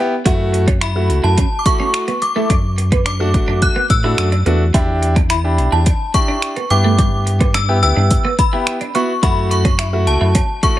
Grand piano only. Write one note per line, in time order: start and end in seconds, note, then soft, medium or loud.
0.00 0.13 B3 loud
0.00 0.13 E4 medium
0.00 0.13 G4 loud
0.25 0.65 A3 loud
0.25 0.65 E4 medium
0.25 0.65 F#4 loud
0.96 1.35 A3 medium
0.96 1.35 E4 medium
0.96 1.35 F#4 medium
1.66 2.05 A3 medium
1.66 2.05 E4 medium
1.66 2.05 F#4 medium
2.36 2.50 A3 medium
2.36 2.50 E4 medium
2.36 2.50 A4 medium
3.20 3.28 A3 medium
3.20 3.28 D4 medium
3.20 3.28 F#4 medium
3.34 3.73 A3 medium
3.34 3.73 D4 medium
3.34 3.73 F#4 medium
4.04 4.27 A3 medium
4.04 4.28 D4 medium
4.04 4.28 F#4 medium
4.46 4.62 A3 medium
4.46 4.62 D4 medium
4.46 4.62 F#4 medium
4.74 5.13 D4 medium
4.74 5.13 E4 medium
4.74 5.13 G4 loud
5.44 5.83 D4 medium
5.44 5.83 E4 medium
5.44 5.84 G4 medium
6.14 6.53 D4 medium
6.14 6.53 E4 medium
6.14 6.54 G4 medium
6.70 7.49 B3 medium
6.70 7.49 E4 medium
6.70 7.49 G4 medium
7.68 7.76 B3 medium
7.68 7.76 E4 medium
7.68 7.77 G4 medium
7.82 8.22 B3 medium
7.82 8.22 E4 medium
7.82 8.22 G4 medium
8.52 8.76 B3 medium
8.52 8.76 E4 medium
8.52 8.76 G4 medium
8.94 9.10 B3 medium
8.94 9.10 E4 medium
8.94 9.11 F#4 medium
9.22 9.62 A3 medium
9.22 9.62 E4 medium
9.22 9.62 F#4 loud
9.93 10.32 A3 medium
9.93 10.32 E4 medium
9.93 10.32 F#4 medium
10.63 10.79 A3 medium
10.63 10.79 E4 medium
10.63 10.79 F#4 medium